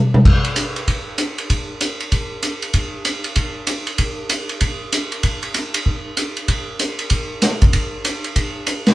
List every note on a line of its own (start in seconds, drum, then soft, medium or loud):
0.14 mid tom medium
0.25 kick medium
0.25 crash medium
0.45 ride soft
0.56 hi-hat pedal medium
0.56 ride medium
0.76 ride soft
0.88 kick soft
0.88 ride medium
1.18 hi-hat pedal medium
1.18 ride medium
1.38 ride soft
1.50 kick soft
1.50 ride medium
1.81 hi-hat pedal medium
1.81 ride medium
2.00 ride soft
2.12 kick soft
2.12 ride medium
2.43 hi-hat pedal medium
2.43 ride medium
2.62 ride soft
2.74 kick soft
2.74 ride medium
3.05 hi-hat pedal medium
3.05 ride medium
3.24 ride soft
3.36 kick soft
3.36 ride medium
3.67 hi-hat pedal medium
3.67 ride medium
3.87 ride soft
3.98 kick soft
3.98 ride medium
4.29 hi-hat pedal medium
4.29 ride medium
4.49 ride soft
4.61 kick soft
4.61 ride medium
4.92 hi-hat pedal medium
4.92 ride medium
5.12 ride soft
5.23 kick soft
5.23 ride medium
5.43 ride soft
5.54 hi-hat pedal soft
5.54 ride medium
5.74 ride medium
5.86 kick soft
6.17 hi-hat pedal medium
6.17 ride medium
6.37 ride soft
6.48 kick soft
6.48 ride medium
6.79 hi-hat pedal medium
6.79 ride medium
6.99 ride soft
7.10 kick soft
7.10 ride medium
7.42 snare soft
7.42 hi-hat pedal medium
7.42 ride medium
7.62 kick medium
7.62 ride soft
7.73 kick soft
7.73 ride medium
8.05 hi-hat pedal medium
8.05 ride medium
8.24 ride soft
8.36 kick soft
8.36 ride medium
8.67 hi-hat pedal medium
8.67 ride medium
8.87 snare medium
8.87 ride soft